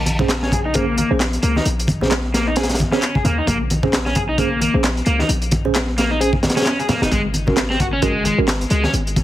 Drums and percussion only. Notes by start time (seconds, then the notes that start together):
0.06 closed hi-hat, high conga
0.19 kick, low conga
0.29 snare, clap, closed hi-hat
0.43 snare
0.52 kick, closed hi-hat
0.74 kick, closed hi-hat
0.98 closed hi-hat, high conga
1.20 snare, clap, closed hi-hat
1.33 closed hi-hat
1.43 closed hi-hat
1.56 snare, high conga
1.65 closed hi-hat
1.79 closed hi-hat
1.87 kick, closed hi-hat, high conga
2.01 snare, low conga
2.11 snare, clap, closed hi-hat
2.34 snare, closed hi-hat
2.56 snare, closed hi-hat
2.63 snare, closed hi-hat
2.69 snare, closed hi-hat
2.74 snare, closed hi-hat
2.79 kick, closed hi-hat, high conga, low conga
2.92 snare
3.02 clap, closed hi-hat
3.15 kick
3.25 closed hi-hat, high conga, low conga
3.47 kick, closed hi-hat
3.70 closed hi-hat, high conga
3.83 kick, low conga
3.93 snare, clap, closed hi-hat
4.06 snare
4.15 kick, closed hi-hat
4.38 kick, closed hi-hat
4.61 closed hi-hat, high conga
4.84 snare, clap, closed hi-hat
4.97 closed hi-hat
5.06 closed hi-hat
5.19 snare, high conga
5.29 closed hi-hat
5.42 closed hi-hat
5.51 kick, closed hi-hat, high conga
5.65 low conga
5.75 snare, clap, closed hi-hat
5.98 snare, closed hi-hat
6.21 closed hi-hat
6.33 kick
6.43 snare, closed hi-hat, high conga, low conga
6.50 snare, closed hi-hat
6.57 snare, closed hi-hat
6.62 snare, closed hi-hat
6.65 snare, clap, closed hi-hat
6.80 closed hi-hat
6.89 snare, closed hi-hat, high conga, low conga
7.02 snare, closed hi-hat
7.12 kick, closed hi-hat
7.34 closed hi-hat, high conga
7.47 kick, low conga
7.57 snare, clap, closed hi-hat
7.71 snare
7.80 kick, closed hi-hat
8.02 kick, closed hi-hat
8.25 closed hi-hat, high conga
8.48 snare, clap, closed hi-hat
8.61 closed hi-hat
8.70 closed hi-hat
8.84 snare, high conga
8.94 closed hi-hat
9.07 closed hi-hat
9.16 kick, closed hi-hat, high conga